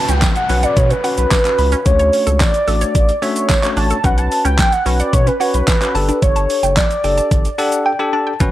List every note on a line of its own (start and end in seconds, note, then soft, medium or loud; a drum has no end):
0.00 0.33 C#4 medium
0.00 0.33 F#4 medium
0.00 0.33 B4 medium
0.00 0.11 A5 loud
0.00 downlifter medium
0.09 0.25 C#2 medium
0.09 0.18 C#4 medium
0.09 0.36 G5 loud
0.09 closed hi-hat medium
0.09 shaker medium
0.22 kick loud
0.22 snare medium
0.22 clap loud
0.22 closed hi-hat medium
0.22 tambourine medium
0.22 shaker medium
0.36 0.65 F#5 loud
0.36 closed hi-hat medium
0.36 shaker medium
0.49 0.66 B1 medium
0.49 0.93 C#4 medium
0.49 0.59 C#4 loud
0.49 0.93 F#4 medium
0.49 0.93 B4 medium
0.49 open hi-hat medium
0.49 shaker soft
0.63 0.79 D5 loud
0.63 0.73 F#5 medium
0.63 closed hi-hat medium
0.63 shaker medium
0.77 0.93 B2 loud
0.77 0.92 C#5 loud
0.77 0.86 B5 medium
0.77 kick loud
0.77 closed hi-hat medium
0.77 shaker medium
0.90 1.00 C#4 medium
0.90 1.17 B4 medium
0.90 closed hi-hat medium
0.90 shaker medium
1.04 1.37 C#4 medium
1.04 1.37 F#4 medium
1.04 1.37 B4 medium
1.04 1.13 F#5 medium
1.04 open hi-hat medium
1.04 shaker medium
1.18 1.26 B1 medium
1.18 1.30 B4 medium
1.18 closed hi-hat medium
1.18 shaker medium
1.31 1.41 C#4 loud
1.31 1.88 B4 loud
1.31 kick loud
1.31 snare medium
1.31 clap loud
1.31 closed hi-hat medium
1.31 tambourine loud
1.31 shaker medium
1.45 1.78 C#4 medium
1.45 1.78 F#4 medium
1.45 1.78 B4 medium
1.45 clap medium
1.45 closed hi-hat medium
1.45 shaker medium
1.59 1.75 C#2 medium
1.59 1.68 B5 medium
1.59 open hi-hat medium
1.59 shaker soft
1.72 1.82 C#4 loud
1.72 closed hi-hat medium
1.72 shaker medium
1.86 2.11 D2 loud
1.86 2.51 A3 medium
1.86 2.51 C#4 medium
1.86 2.51 D4 medium
1.86 2.51 F#4 medium
1.86 2.40 C#5 loud
1.86 2.52 C#5 medium
1.86 kick loud
1.86 closed hi-hat medium
1.86 shaker medium
1.99 2.09 C#5 medium
1.99 closed hi-hat medium
1.99 shaker medium
2.13 open hi-hat medium
2.13 shaker medium
2.27 2.43 C#2 medium
2.27 2.36 A4 medium
2.27 closed hi-hat medium
2.27 shaker medium
2.40 3.24 D5 loud
2.40 kick loud
2.40 snare medium
2.40 clap loud
2.40 closed hi-hat medium
2.40 tambourine medium
2.40 shaker medium
2.54 closed hi-hat medium
2.54 shaker medium
2.68 2.84 A1 medium
2.68 3.11 A3 medium
2.68 3.12 D4 medium
2.68 3.12 F#4 medium
2.68 2.77 A4 medium
2.68 3.12 D5 medium
2.68 open hi-hat medium
2.68 shaker medium
2.81 2.91 C#5 medium
2.81 closed hi-hat medium
2.81 shaker medium
2.95 3.11 A1 loud
2.95 kick loud
2.95 closed hi-hat medium
2.95 shaker medium
3.09 closed hi-hat medium
3.09 shaker medium
3.22 3.55 A3 medium
3.22 3.55 C#4 medium
3.22 3.55 D4 medium
3.22 3.55 F#4 medium
3.22 3.32 C#5 medium
3.22 3.79 C#5 loud
3.22 3.55 E5 medium
3.22 open hi-hat medium
3.22 shaker soft
3.36 closed hi-hat medium
3.36 shaker medium
3.49 3.59 A4 medium
3.49 kick loud
3.49 snare medium
3.49 clap loud
3.49 closed hi-hat medium
3.49 tambourine loud
3.49 shaker medium
3.63 3.96 A3 medium
3.63 3.96 C#4 medium
3.63 3.96 D4 medium
3.63 3.96 F#4 medium
3.63 3.73 C#5 medium
3.63 3.96 C#5 medium
3.63 clap medium
3.63 closed hi-hat medium
3.63 shaker medium
3.77 3.93 A1 loud
3.77 3.86 D4 medium
3.77 4.06 A5 loud
3.77 open hi-hat medium
3.77 shaker soft
3.90 4.00 A4 medium
3.90 closed hi-hat medium
3.90 shaker medium
4.04 4.29 B1 loud
4.04 4.69 C#4 medium
4.04 4.13 C#4 loud
4.04 4.70 F#4 medium
4.04 4.70 B4 medium
4.04 4.20 F#5 loud
4.04 kick loud
4.04 closed hi-hat medium
4.04 shaker medium
4.18 4.27 F#5 medium
4.18 4.45 A5 loud
4.18 closed hi-hat medium
4.18 shaker medium
4.32 open hi-hat medium
4.32 shaker medium
4.45 4.61 C#2 loud
4.45 4.54 C#4 loud
4.45 4.74 G5 loud
4.45 closed hi-hat medium
4.45 shaker medium
4.59 kick loud
4.59 snare medium
4.59 clap loud
4.59 closed hi-hat medium
4.59 tambourine medium
4.59 shaker medium
4.73 4.99 F#5 medium
4.73 closed hi-hat medium
4.73 shaker medium
4.86 5.02 B1 medium
4.86 5.29 C#4 medium
4.86 4.95 C#4 loud
4.86 5.30 F#4 medium
4.86 5.30 B4 medium
4.86 open hi-hat medium
4.86 shaker medium
5.00 5.15 D5 medium
5.00 5.09 F#5 medium
5.00 closed hi-hat medium
5.00 shaker medium
5.13 5.30 B2 loud
5.13 5.29 C#5 medium
5.13 5.22 B5 medium
5.13 kick loud
5.13 closed hi-hat medium
5.13 shaker medium
5.27 5.36 C#4 medium
5.27 5.54 B4 medium
5.27 closed hi-hat medium
5.27 shaker medium
5.40 5.73 C#4 medium
5.40 5.73 F#4 medium
5.40 5.73 C#5 medium
5.40 5.50 F#5 medium
5.40 open hi-hat medium
5.40 shaker medium
5.54 5.62 B1 loud
5.54 5.67 B4 medium
5.54 closed hi-hat medium
5.54 shaker medium
5.67 5.77 C#4 medium
5.67 6.19 B4 medium
5.67 kick loud
5.67 snare medium
5.67 clap loud
5.67 closed hi-hat medium
5.67 tambourine loud
5.67 shaker medium
5.81 5.95 C#4 medium
5.81 5.95 F#4 medium
5.81 5.95 B4 medium
5.81 clap medium
5.81 closed hi-hat medium
5.81 shaker medium
5.95 6.11 G1 loud
5.95 6.82 D4 medium
5.95 6.83 G4 medium
5.95 6.83 A4 medium
5.95 6.04 A5 medium
5.95 open hi-hat medium
5.95 shaker soft
6.09 6.18 D4 medium
6.09 closed hi-hat soft
6.09 shaker medium
6.22 6.47 G1 loud
6.22 6.73 C#5 medium
6.22 kick loud
6.22 closed hi-hat medium
6.22 shaker medium
6.36 6.45 A5 medium
6.36 closed hi-hat medium
6.36 shaker medium
6.50 open hi-hat medium
6.50 shaker medium
6.63 6.80 F#1 loud
6.63 6.73 G5 medium
6.63 closed hi-hat medium
6.63 shaker medium
6.77 8.09 D5 medium
6.77 kick loud
6.77 snare medium
6.77 clap loud
6.77 closed hi-hat medium
6.77 tambourine medium
6.77 shaker medium
6.91 closed hi-hat medium
6.91 shaker medium
7.04 7.20 F#1 medium
7.04 7.48 D4 medium
7.04 7.48 G4 medium
7.04 7.48 A4 medium
7.04 7.14 G5 medium
7.04 open hi-hat medium
7.04 shaker medium
7.18 7.27 A5 medium
7.18 closed hi-hat medium
7.18 shaker medium
7.31 7.48 G1 loud
7.31 kick loud
7.31 closed hi-hat medium
7.31 shaker medium
7.45 closed hi-hat medium
7.45 shaker medium
7.58 7.91 D4 loud
7.58 7.91 G4 medium
7.58 7.91 A4 loud
7.58 7.84 F#5 medium
7.58 7.68 A5 medium
7.58 open hi-hat medium
7.58 shaker medium
7.72 closed hi-hat medium
7.72 shaker medium
7.86 8.11 G5 medium
7.86 7.95 G5 medium
7.99 8.32 D4 loud
7.99 8.32 G4 medium
7.99 8.32 A4 loud
7.99 8.09 A5 medium
8.13 8.22 D4 loud
8.13 8.38 A5 medium
8.27 8.36 G5 medium
8.40 8.52 B1 loud
8.40 8.52 C#4 loud
8.40 8.50 C#4 loud
8.40 8.52 F#4 medium
8.40 8.52 B4 loud
8.40 muted clean electric guitar stroke soft
8.40 kick loud
8.40 closed hi-hat medium
8.40 shaker medium